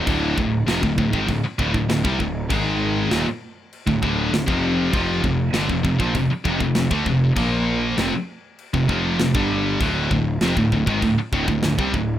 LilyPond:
<<
  \new Staff \with { instrumentName = "Distorted electric guitar" } { \clef bass \time 4/4 \key d \minor \tempo 4 = 98 <d, a, d>8 <d, a,>8 <f, c>16 <d, a,>16 <d, a,>16 <gis, ees>16 <d, a,>16 r16 <d, a,>16 <d, a,>16 <d, a,>16 <c g>16 <d, a,>8 | <gis, dis gis>4 <ees, bes,>16 r4 <d, a,>16 <d, a, d>8 <d, a,>16 <f, c f>8. | <f, c f>8 <f, c>8 <g, d>16 <f, c>16 <f, c>16 <bes, f>16 <f, c>16 r16 <f, c>16 <f, c>16 <f, c>16 <d a>16 <f, c>8 | <bes, f bes>4 <f, c>16 r4 <f, c>16 <f, c f>8 <f, c>16 <g, d g>8. |
<d, a, d>8 <d, a,>8 <f, c>16 <d, a,>16 <d, a,>16 <gis, ees>16 <d, a,>16 r16 <d, a,>16 <d, a,>16 <d, a,>16 <c g>16 <d, a,>8 | }
  \new Staff \with { instrumentName = "Distorted electric guitar" } { \clef bass \time 4/4 \key d \minor <d, a, d>8 <d, a,>8 <f, c>16 <d, a,>16 <d, a,>16 <gis, ees>16 <d, a,>16 r16 <d, a,>16 <d, a,>16 <d, a,>16 <c g>16 <d, a,>8 | <gis, dis gis>4 <ees, bes,>16 r4 <d, a,>16 <d, a, d>8 <d, a,>16 <f, c f>8. | <f, c f>8 <f, c>8 <g, d>16 <f, c>16 <f, c>16 <bes, f>16 <f, c>16 r16 <f, c>16 <f, c>16 <f, c>16 <d a>16 <f, c>8 | <bes, f bes>4 <f, c>16 r4 <f, c>16 <f, c f>8 <f, c>16 <g, d g>8. |
<d, a, d>8 <d, a,>8 <f, c>16 <d, a,>16 <d, a,>16 <gis, ees>16 <d, a,>16 r16 <d, a,>16 <d, a,>16 <d, a,>16 <c g>16 <d, a,>8 | }
  \new Staff \with { instrumentName = "Distorted electric guitar" } { \clef bass \time 4/4 \key d \minor <d, a, d>8 <d, a,>8 <f, c>16 <d, a,>16 <d, a,>16 <gis, ees>16 <d, a,>16 r16 <d, a,>16 <d, a,>16 <d, a,>16 <c g>16 <d, a,>8 | <gis, dis gis>4 <ees, bes,>16 r4 <d, a,>16 <d, a, d>8 <d, a,>16 <f, c f>8. | <f, c f>8 <f, c>8 <g, d>16 <f, c>16 <f, c>16 <bes, f>16 <f, c>16 r16 <f, c>16 <f, c>16 <f, c>16 <d a>16 <f, c>8 | <bes, f bes>4 <f, c>16 r4 <f, c>16 <f, c f>8 <f, c>16 <g, d g>8. |
<d, a, d>8 <d, a,>8 <f, c>16 <d, a,>16 <d, a,>16 <gis, ees>16 <d, a,>16 r16 <d, a,>16 <d, a,>16 <d, a,>16 <c g>16 <d, a,>8 | }
  \new Staff \with { instrumentName = "Picked electric bass" } { \clef bass \time 4/4 \key d \minor d,,8 d,,8 f,,16 d,,16 d,,16 gis,,16 d,,16 r16 d,,16 d,,16 d,,16 c,16 d,,8 | gis,,4 ees,,16 r4 d,,16 d,,8 d,,16 f,,8. | f,,8 f,,8 g,,16 f,,16 f,,16 bes,,16 f,,16 r16 f,,16 f,,16 f,,16 d,16 f,,8 | bes,,4 f,,16 r4 f,,16 f,,8 f,,16 g,,8. |
d,,8 d,,8 f,,16 d,,16 d,,16 gis,,16 d,,16 r16 d,,16 d,,16 d,,16 c,16 d,,8 | }
  \new DrumStaff \with { instrumentName = "Drums" } \drummode { \time 4/4 <cymc bd>8 bd8 <cymc sn>16 bd16 bd16 bd16 <cymc bd>8 bd16 bd16 <cymc sn>16 bd16 bd8 | <cymc bd>4 <cymc sn>4 cymc16 bd16 bd8 <cymc sn>16 bd8. | <cymc bd>8 bd8 <cymc sn>16 bd16 bd16 bd16 <cymc bd>8 bd16 bd16 <cymc sn>16 bd16 bd8 | <cymc bd>4 <cymc sn>4 cymc16 bd16 bd8 <cymc sn>16 bd8. |
<cymc bd>8 bd8 <cymc sn>16 bd16 bd16 bd16 <cymc bd>8 bd16 bd16 <cymc sn>16 bd16 bd8 | }
>>